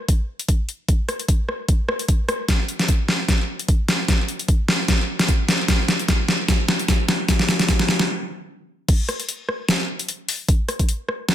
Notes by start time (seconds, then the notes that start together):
0.09 kick, closed hi-hat
0.39 closed hi-hat
0.49 kick, closed hi-hat
0.69 closed hi-hat
0.89 kick, closed hi-hat
1.09 cross-stick, closed hi-hat
1.20 closed hi-hat
1.29 kick, closed hi-hat
1.49 cross-stick
1.69 kick, closed hi-hat
1.89 cross-stick
1.99 closed hi-hat
2.09 kick, closed hi-hat
2.29 cross-stick, closed hi-hat
2.49 kick, snare, closed hi-hat
2.69 closed hi-hat
2.79 snare, closed hi-hat
2.88 kick, closed hi-hat
3.08 snare
3.29 kick, snare, closed hi-hat
3.59 closed hi-hat
3.68 kick, closed hi-hat
3.88 snare, closed hi-hat
4.08 kick, snare, closed hi-hat
4.28 closed hi-hat
4.39 closed hi-hat
4.48 kick, closed hi-hat
4.68 snare
4.88 kick, snare, closed hi-hat
5.19 snare, closed hi-hat
5.28 kick, closed hi-hat
5.49 snare, closed hi-hat
5.68 kick, snare, closed hi-hat
5.88 snare, closed hi-hat
5.99 closed hi-hat
6.08 kick, snare, closed hi-hat
6.29 snare
6.48 kick, snare, closed hi-hat
6.68 snare
6.79 closed hi-hat
6.88 kick, snare, closed hi-hat
7.09 snare, closed hi-hat
7.29 kick, snare, closed hi-hat
7.39 snare
7.49 snare, closed hi-hat
7.59 snare, closed hi-hat
7.68 kick, snare, closed hi-hat
7.79 snare
7.89 snare
7.99 snare
8.89 kick, closed hi-hat, crash
9.09 cross-stick, closed hi-hat
9.20 closed hi-hat
9.29 closed hi-hat
9.49 cross-stick
9.69 snare, closed hi-hat
9.99 closed hi-hat
10.09 closed hi-hat
10.29 open hi-hat
10.49 kick, closed hi-hat
10.69 cross-stick, closed hi-hat
10.79 kick, closed hi-hat
10.89 closed hi-hat
11.09 cross-stick
11.29 snare, closed hi-hat